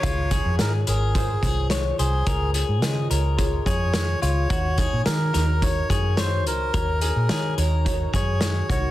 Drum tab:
HH |xxxxxxxx|xxxxxxxx|xxxxxxxx|xxxxxxxx|
SD |--o---o-|--o---o-|--oo--o-|--o---o-|
BD |oo--oo--|o---oo--|oo--oo--|o---oo-o|